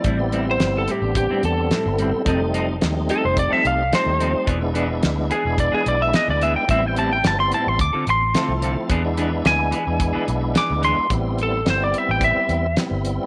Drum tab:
HH |xxxxxxxx|xxxxxxxx|xxxxxxxx|xxxxxxxx|
SD |--o---o-|--o---o-|--o---o-|--o---o-|
BD |o---o---|o---o---|o---o---|o---o---|

HH |xxxxxxxx|xxxxxxxx|
SD |--o---o-|--o---o-|
BD |o---o---|o---o---|